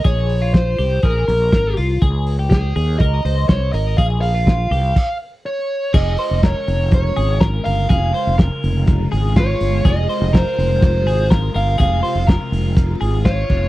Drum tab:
CC |--------|--------|----x---|x-------|
RD |--------|--------|--------|--x-x-x-|
HH |xoxoxoxo|xoxoxoxo|xoxo----|-opopopo|
SD |--o---o-|--o---o-|--o-----|--o---o-|
BD |o-o-o-o-|o-o-o-o-|o-o-o---|o-o-o-o-|

CC |--------|--------|-------x|
RD |x-x-x-x-|x-x-x-x-|x-x-x-x-|
HH |popopopo|popopopo|popopop-|
SD |--o---o-|--o---o-|--o---o-|
BD |o-o-o-o-|o-o-o-o-|o-o-o-oo|